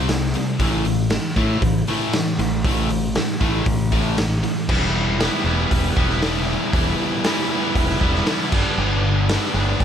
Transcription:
Already playing: picked electric bass C2
0.09 overdriven electric guitar C3 G3, snare, open hi-hat
0.34 overdriven electric guitar C3 G3, open hi-hat
0.59 picked electric bass A1, overdriven electric guitar A2 E3 A3, kick, open hi-hat
0.85 overdriven electric guitar A2 E3, open hi-hat
1.10 overdriven electric guitar A2 E3, snare, open hi-hat
1.36 picked electric bass A2, overdriven electric guitar A2 E3 A3, kick, open hi-hat
1.62 picked electric bass A1, overdriven electric guitar A2 E3, kick, open hi-hat
1.87 overdriven electric guitar A2 E3 A3, open hi-hat
2.13 overdriven electric guitar A2 E3, snare, open hi-hat
2.39 picked electric bass A1, overdriven electric guitar A2 E3, open hi-hat
2.64 overdriven electric guitar A2 E3 A3, kick, open hi-hat
2.89 overdriven electric guitar A2 E3, open hi-hat
3.15 overdriven electric guitar A2 E3, snare, open hi-hat
3.40 picked electric bass A1, overdriven electric guitar A2 E3 A3, kick, open hi-hat
3.66 picked electric bass A1, overdriven electric guitar A2 E3, kick, open hi-hat
3.92 overdriven electric guitar A2 E3 A3, kick, open hi-hat
4.18 overdriven electric guitar A2 E3, snare, open hi-hat
4.43 overdriven electric guitar A2 E3, open hi-hat
4.69 picked electric bass E1, overdriven electric guitar E3 G3 B3 E4, kick, crash
5.19 overdriven electric guitar E3 G3 B3 E4, snare, open hi-hat
5.44 picked electric bass E1, overdriven electric guitar G3 B3 E4
5.71 picked electric bass E1, kick, open hi-hat
5.96 picked electric bass E1, overdriven electric guitar G3 B3 E4, kick
6.10 snare
6.22 overdriven electric guitar E3 G3 B3 E4, snare, open hi-hat
6.73 picked electric bass E1, overdriven electric guitar E3 G3 B3 E4, kick, open hi-hat
7.24 overdriven electric guitar E3 G3 B3 E4, snare, open hi-hat
7.51 overdriven electric guitar G3 B3 E4
7.75 picked electric bass E1, kick, open hi-hat
7.89 snare
8.01 picked electric bass E1, overdriven electric guitar G3 B3 E4, kick
8.15 snare
8.27 overdriven electric guitar E3 G3 B3 E4, snare, open hi-hat
8.52 picked electric bass G1, overdriven electric guitar G2 D3 G3 B3 D4, kick, crash
8.78 picked electric bass G1, overdriven electric guitar G2 D3 G3 B3 D4
9.29 overdriven electric guitar D3 G3 B3 D4, snare, open hi-hat
9.54 picked electric bass G1, overdriven electric guitar G3 B3 D4
9.80 picked electric bass G1, kick, open hi-hat

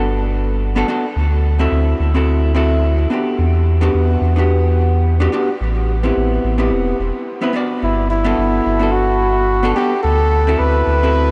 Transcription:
Already playing: sub bass G1, hollow-body jazz guitar B3 D4 F#4 A4
0.76 hollow-body jazz guitar B3 D4 F#4 A4
0.88 hollow-body jazz guitar B3 D4 F#4 A4
1.16 sub bass D2
1.59 hollow-body jazz guitar C4 E4 F#4 A4
1.72 sub bass D2
2.00 sub bass D2
2.14 hollow-body jazz guitar C4 E4 F#4 A4
2.55 hollow-body jazz guitar C4 E4 F#4 A4
3.10 hollow-body jazz guitar B3 D4 F#4 G4
3.39 sub bass E2
3.81 hollow-body jazz guitar B3 D4 F#4 G4
3.94 sub bass E2
4.21 sub bass E2
4.36 hollow-body jazz guitar B3 D4 F#4 G4
5.20 hollow-body jazz guitar B3 D4 F#4 G4
5.32 hollow-body jazz guitar B3 D4 F#4 G4
5.61 sub bass A1
6.03 hollow-body jazz guitar B3 C4 E4 G4
6.17 sub bass A1
6.44 sub bass A1
6.58 hollow-body jazz guitar B3 C4 E4 G4
6.71 sub bass E1
7.00 sub bass E1
7.41 hollow-body jazz guitar B3 C4 E4 B4
7.53 hollow-body jazz guitar B3 D4 F#4 D5
7.83 sub bass G1, muted trumpet E4
8.11 muted trumpet E4
8.24 hollow-body jazz guitar B3 D4 F#4 A4
8.38 sub bass G1
8.66 sub bass G1
8.79 hollow-body jazz guitar B3 D4 F#4 A4
8.92 muted trumpet F#4
9.63 hollow-body jazz guitar B3 D4 F#4 A4
9.75 hollow-body jazz guitar B3 D4 F#4 A4, muted trumpet G4
10.03 sub bass D2, muted trumpet A4
10.47 hollow-body jazz guitar C4 E4 F#4 A4
10.59 sub bass D2, muted trumpet B4
10.87 sub bass D2
11.03 hollow-body jazz guitar C4 E4 F#4 A4

